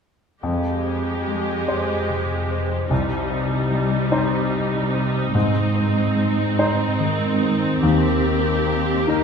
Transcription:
0.43 F2 G#3 G4
0.85 C5
1.26 G#3
1.67 G4 C5
2.09 C3
2.50 C5
2.90 C2 C3 G3 D#4
3.30 C5
3.70 G3
4.11 D#4 C5
4.53 C4
4.93 C5
5.33 G#2 C4
5.75 C5
6.16 G#3
6.57 D#4 C5
6.99 D#3
7.41 C5
7.82 D#2 D#3 G4
8.24 A#4
8.66 D#4
9.08 A#3 D#4 A#4

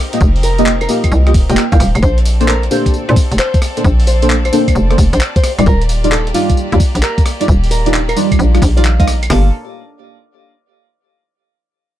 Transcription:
Already playing: C4 D#4 G4 A#4
0.13 A#3 F4 G4 D#5, closed hi-hat, tambourine
0.20 F1, kick, tambourine
0.36 open hi-hat
0.43 A#4, open hi-hat, tambourine
0.58 A#3 F4 G4 D#5, closed hi-hat, tambourine
0.66 clap, tambourine
0.81 A#4, closed hi-hat, tambourine, claves
0.89 A#3 F4 G4 D#5, open hi-hat, tambourine
1.04 kick, closed hi-hat, tambourine, claves
1.12 C2, tambourine
1.27 A#3 F4 G4 D#5, cross-stick, closed hi-hat
1.34 D#1, kick, open hi-hat, tambourine
1.49 F1 A#3 F4 G4 D#5 G5, closed hi-hat, tambourine
1.57 clap, tambourine
1.72 C2 A#3 F4 G4 F5 G5, kick, closed hi-hat, tambourine
1.80 D#1, cross-stick, open hi-hat, tambourine
1.95 F1, closed hi-hat, tambourine, claves
2.02 A#1 C4 F4 A4 C5 D5, kick, tambourine
2.18 closed hi-hat
2.25 open hi-hat, tambourine
2.40 A#3 D4 A4 C5, closed hi-hat, tambourine
2.48 A#4, clap, tambourine
2.63 closed hi-hat
2.71 A#3 D4 G4 A4 C5, open hi-hat, tambourine
2.86 kick, closed hi-hat, tambourine
2.94 tambourine
3.09 A#2 A#3 D4 A4 C5, closed hi-hat
3.16 kick, open hi-hat, tambourine
3.32 F1, closed hi-hat, tambourine
3.39 C5, clap, tambourine
3.54 kick, closed hi-hat, tambourine
3.62 cross-stick, open hi-hat, tambourine
3.77 A#3 D4 A4 C5, closed hi-hat, tambourine
3.85 A#1, kick, tambourine
4.00 open hi-hat
4.07 C5, open hi-hat, tambourine
4.22 A#3 D4 A4 C5, closed hi-hat, tambourine
4.30 clap, tambourine
4.45 C5, closed hi-hat, tambourine, claves
4.52 A#3 D4 A4 C5, open hi-hat, tambourine
4.68 kick, closed hi-hat, tambourine, claves
4.75 F1, tambourine
4.90 A#3 D4 A4 C5, cross-stick, closed hi-hat
4.98 F1, kick, open hi-hat, tambourine
5.13 A#1 C5, closed hi-hat, tambourine
5.21 clap, tambourine
5.36 C5, kick, closed hi-hat, tambourine
5.44 A#3 G4, cross-stick, open hi-hat, tambourine
5.58 D#1 G3 D#4 F4 D5, closed hi-hat, tambourine, claves
5.66 D#1 A#4, kick, tambourine
5.82 closed hi-hat
5.89 open hi-hat, tambourine
6.04 G3 D#4 F4 D5, closed hi-hat, tambourine
6.12 A4, clap, tambourine
6.27 closed hi-hat
6.34 G3 D#4 F4 D5, open hi-hat, tambourine
6.50 kick, closed hi-hat, tambourine
6.57 tambourine
6.72 D#2 G3 D#4 F4 D5, closed hi-hat
6.80 kick, open hi-hat, tambourine
6.95 A#1, closed hi-hat, tambourine
7.03 A#4, clap, tambourine
7.18 kick, closed hi-hat, tambourine
7.26 cross-stick, open hi-hat, tambourine
7.40 G3 D#4 F4 D5, closed hi-hat, tambourine
7.48 D#1, kick, tambourine
7.64 open hi-hat, tambourine
7.71 A#4, open hi-hat, tambourine
7.86 G3 D#4 F4 D5, closed hi-hat, tambourine
7.94 clap, tambourine
8.09 A#4, closed hi-hat, tambourine, claves
8.16 G3 D#4 F4 D5, open hi-hat, tambourine
8.32 kick, closed hi-hat, tambourine, claves
8.39 A#1, tambourine
8.54 G3 D#4 F4 D5, cross-stick, closed hi-hat, tambourine
8.62 A#1, kick, open hi-hat, tambourine
8.77 G3 D#4 F4 D5 F5, closed hi-hat, tambourine
8.85 clap, tambourine
8.99 G3 D#4 F4 D#5 F5, kick, closed hi-hat, tambourine
9.08 cross-stick, open hi-hat, tambourine
9.23 closed hi-hat, tambourine, claves
9.30 G1 A#3 D4 F4 G4 A4 D5 F5, snare, open hi-hat

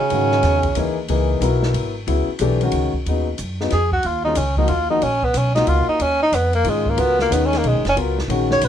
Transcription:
0.00 C#3 C#4
0.10 G#2 D#3 G#3 C#4 F#4, ride
0.31 snare
0.43 E2, snare, ride
0.63 kick, ride
0.75 D#2 E3 A#3 D#4 G#4, hi-hat pedal, ride
1.08 C#2 E3 A#3 D#4 G#4, ride
1.40 B1 F#3 B3 E4 A#4, hi-hat pedal, ride
1.63 snare
1.74 G#1, ride
2.07 C#2 C#3 F#3 B3 E4, ride
2.28 muted upright bass stroke
2.39 B1 E3 A3 D4 G4, hi-hat pedal, ride
2.61 D#3 G#3 C#4 F#4, ride
2.72 C#2, ride
2.94 muted upright bass stroke, kick
3.06 D#2 C#3 F#3 B3 D#4, ride
3.38 F#2, hi-hat pedal, ride
3.60 C#3 F#3 B3 D#4, snare
3.70 F2 G#4, snare, ride
3.92 F#4, kick
4.03 D#2 F4, ride
4.25 D#3 G#3 C#4 D#4 F4
4.35 C#2 C#4, hi-hat pedal, ride
4.57 F3 A#3 D#4 F#4, kick
4.68 D#2 F4, ride
4.90 F3 A#3 D#4 F#4
5.02 A#1 C#4, ride
5.23 B3, kick
5.34 B1 C#4, hi-hat pedal, ride
5.55 A#3 D#4 F4 F#4, snare, ride
5.67 C#2 F4, ride
5.88 D#4, muted upright bass stroke
6.00 D#2 C#4, ride
6.23 D#4
6.32 F2 B3, hi-hat pedal, ride
6.53 A#3, ride
6.64 G#2 D#3 G#3 C#4 F4, ride
6.70 G#3
6.86 A#3, kick
6.97 C#2 F#3 B3 F4 A#4, ride
7.19 A#3, snare
7.30 D#2 D#3 G#3 B3 C#4 D#4, hi-hat pedal, ride
7.46 C#4
7.53 snare, ride
7.58 A#3
7.63 B1, ride
7.68 G#3
7.74 G#1
7.85 F#1, snare, ride
7.89 C#4
7.95 C#2 F#3 B3 F4 A#4, ride
8.19 snare
8.28 A#1 D#3 G#3 C#4 F#4, ride
8.51 C#5, snare
8.61 B1 B4, hi-hat pedal, ride

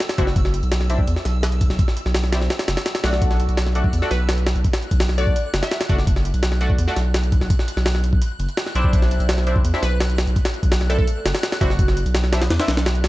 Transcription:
Already playing: E6
0.00 snare, closed hi-hat
0.09 snare, closed hi-hat
0.18 F#1 C4 D4 E4 F#4, kick, closed hi-hat
0.27 snare
0.36 kick, closed hi-hat
0.45 snare
0.54 closed hi-hat
0.63 B1, closed hi-hat
0.72 snare, closed hi-hat
0.81 snare
0.90 C4 D4 E4, closed hi-hat
0.99 kick
1.07 E2, closed hi-hat
1.16 snare
1.25 B1, snare, closed hi-hat
1.43 snare, closed hi-hat
1.52 closed hi-hat
1.61 kick, closed hi-hat
1.70 B1, snare
1.79 kick, closed hi-hat
1.88 snare
1.97 closed hi-hat
2.06 B1, snare
2.15 snare, open hi-hat
2.24 snare
2.32 C4 D4 E4, snare, closed hi-hat
2.42 snare
2.50 snare, closed hi-hat
2.59 snare, closed hi-hat
2.68 F#1, snare, closed hi-hat
2.77 snare, closed hi-hat
2.86 snare, closed hi-hat
2.95 snare, closed hi-hat
3.04 B1 A3 D4 F#4, snare, open hi-hat
3.13 snare
3.22 F#6, kick, closed hi-hat
3.31 snare
3.40 closed hi-hat
3.49 B1, closed hi-hat
3.57 snare, closed hi-hat
3.66 snare
3.75 A3 D4 F#4, closed hi-hat
3.84 kick
3.93 E2, closed hi-hat
4.02 A3 D4 F#4, snare
4.11 B1 B4, snare, closed hi-hat
4.29 snare, closed hi-hat
4.38 closed hi-hat
4.47 snare, closed hi-hat
4.55 B1, closed hi-hat
4.64 kick, closed hi-hat
4.73 snare, closed hi-hat
4.82 closed hi-hat
4.91 B1, kick, closed hi-hat
5.00 snare, open hi-hat
5.09 snare
5.18 A3 D4 F#4 D5, closed hi-hat
5.27 kick
5.36 closed hi-hat
5.53 F#1, snare, closed hi-hat
5.63 E5, snare, closed hi-hat
5.71 snare, closed hi-hat
5.81 snare, closed hi-hat
5.89 F#1 A3 D4 F#4, kick, closed hi-hat
5.98 snare
6.07 kick, closed hi-hat
6.16 snare
6.25 closed hi-hat
6.34 B1, closed hi-hat
6.43 snare, closed hi-hat
6.52 snare
6.61 A3 D4 F#4, closed hi-hat
6.70 kick
6.78 E2, closed hi-hat
6.88 A3 D4 F#4, snare
6.96 B1, snare, closed hi-hat
7.14 snare, closed hi-hat
7.24 closed hi-hat
7.32 kick, closed hi-hat
7.41 B1, snare
7.50 kick, closed hi-hat
7.59 snare
7.68 closed hi-hat
7.77 B1, snare
7.86 snare, open hi-hat
7.95 snare
8.04 closed hi-hat
8.13 kick
8.22 closed hi-hat
8.39 F#1, closed hi-hat
8.49 closed hi-hat
8.57 snare, closed hi-hat
8.66 snare
8.75 B1 C4 D4 E4, closed hi-hat
8.84 kick
8.93 kick, closed hi-hat
9.02 snare
9.11 closed hi-hat
9.20 B1, closed hi-hat
9.29 snare, closed hi-hat
9.38 snare
9.47 C4 D4 E4, closed hi-hat
9.56 kick
9.64 E2, closed hi-hat
9.74 C4 D4 E4, snare
9.82 B1 B4, snare, closed hi-hat
10.00 snare, closed hi-hat
10.10 closed hi-hat
10.18 snare, closed hi-hat
10.27 B1, closed hi-hat
10.36 kick, closed hi-hat
10.45 snare, closed hi-hat
10.54 closed hi-hat
10.63 B1, kick, closed hi-hat
10.72 snare, open hi-hat
10.81 snare
10.90 C4 D4 E4 A4, closed hi-hat
10.98 A4, kick
11.08 closed hi-hat
11.25 F#1, snare, closed hi-hat
11.35 snare, closed hi-hat
11.43 snare, closed hi-hat
11.52 snare, closed hi-hat
11.61 F#1 C4 D4 E4 F#4, kick, closed hi-hat
11.70 snare
11.79 kick, closed hi-hat
11.88 snare
11.97 closed hi-hat
12.05 B1, closed hi-hat
12.15 snare, closed hi-hat
12.24 snare
12.33 C4 D4 E4, snare, closed hi-hat
12.42 snare, closed hi-hat
12.50 E2, snare, closed hi-hat
12.59 C4 D4 E4, snare, closed hi-hat
12.68 B1, snare, closed hi-hat
12.77 snare, closed hi-hat
12.86 snare, closed hi-hat
12.95 closed hi-hat
13.04 snare, closed hi-hat

